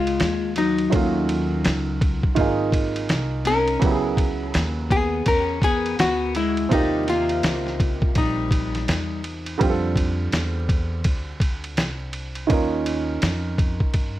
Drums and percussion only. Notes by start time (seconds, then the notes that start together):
0.07 ride
0.20 snare, hi-hat pedal, ride
0.56 ride
0.78 ride
0.92 kick, ride
1.29 ride
1.65 snare, hi-hat pedal, ride
2.01 kick, ride
2.23 kick
2.36 kick, ride
2.72 kick, ride
2.96 ride
3.09 snare, hi-hat pedal, ride
3.45 ride
3.67 ride
3.82 kick, ride
4.17 kick, ride
4.54 snare, hi-hat pedal, ride
4.91 kick, ride
5.26 kick, ride
5.62 kick, ride
5.86 ride
5.99 snare, hi-hat pedal, ride
6.35 ride
6.57 ride
6.71 kick, ride
7.08 snare, ride
7.29 ride
7.43 snare, hi-hat pedal, ride
7.67 snare
7.80 kick, ride
8.02 kick
8.15 kick, ride
8.51 kick, ride
8.75 snare, ride
8.88 snare, hi-hat pedal, ride
9.24 ride
9.46 ride
9.61 kick, ride
9.96 kick, ride
10.32 snare, hi-hat pedal, ride
10.69 kick, ride
11.04 kick, ride
11.40 kick, ride
11.64 ride
11.77 snare, hi-hat pedal, ride
12.13 ride
12.35 ride
12.50 kick, ride
12.86 ride
13.22 snare, hi-hat pedal, ride
13.58 kick, ride
13.80 kick
13.94 kick, ride